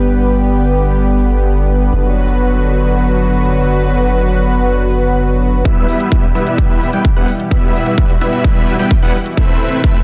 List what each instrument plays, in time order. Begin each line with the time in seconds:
Already playing: analog synth bass G1, analog synth pad D3 G3 B3 G4 B4
1.93 analog synth bass F#1, analog synth pad F#3 F#4 B4
5.65 analog synth bass E1, analog synth pad B2 E3 G3 E4 G4, supersaw synth G3 B3 E4 B4 E5, kick, closed hi-hat
5.88 open hi-hat
6.00 closed hi-hat
6.12 analog synth bass E1, supersaw synth G3 B3 E4 B4 E5, kick, closed hi-hat
6.23 closed hi-hat
6.35 analog synth bass E1, supersaw synth G3 B3 E4 B4 E5, open hi-hat
6.47 closed hi-hat
6.58 kick, closed hi-hat
6.82 open hi-hat
6.93 analog synth bass E1, supersaw synth G3 B3 E4 B4 G5, closed hi-hat
7.05 kick, closed hi-hat
7.16 analog synth bass E1, supersaw synth G3 B3 E4 B4 F#5, closed hi-hat
7.28 open hi-hat
7.40 closed hi-hat
7.51 analog synth bass E1, supersaw synth G3 B3 E4 B4 E5, analog synth pad F#4, kick, closed hi-hat
7.75 open hi-hat
7.86 closed hi-hat
7.98 analog synth bass E1, supersaw synth G3 B3 E4 B4 E5, kick, closed hi-hat
8.10 closed hi-hat
8.21 analog synth bass E1, supersaw synth G3 B3 E4 B4 E5, open hi-hat
8.33 closed hi-hat
8.44 kick, closed hi-hat
8.68 open hi-hat
8.79 analog synth bass E1, supersaw synth G3 B3 E4 B4 G5, closed hi-hat
8.91 kick, closed hi-hat
9.02 analog synth bass E1, supersaw synth G3 B3 E4 B4 F#5, closed hi-hat
9.14 open hi-hat
9.26 closed hi-hat
9.37 analog synth bass A1, analog synth pad C3 A3 B4, supersaw synth A3 C4 E4 B4 E5, kick, closed hi-hat
9.61 open hi-hat
9.72 closed hi-hat
9.84 analog synth bass A1, supersaw synth A3 C4 E4 B4 E5, kick, closed hi-hat
9.96 closed hi-hat